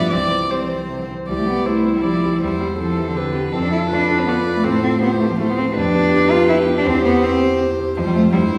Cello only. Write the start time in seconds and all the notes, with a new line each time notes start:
Already playing: F3
0.11 E3
0.51 G3
0.61 F3
0.69 E3
0.89 C3
1.01 D3
1.08 E3
1.27 G3
1.38 A3
1.47 B3
1.66 A3
1.94 G3
2.02 F3
2.32 E3
2.40 G3
2.59 G3
2.78 F3
2.98 E3
3.08 D3
3.53 C4
3.64 D4
3.71 E4
3.92 D4
4.18 C4
4.26 B3
4.56 A3
4.64 C4
4.82 C4
5.01 B3
5.19 A3
5.30 F3
5.37 A3
5.50 B3
5.57 C4
5.75 D4
6.31 F4
6.49 E4
6.78 D4
6.87 C4
7.05 B3
7.24 C4
7.97 F3
8.06 G3
8.14 A3
8.32 G3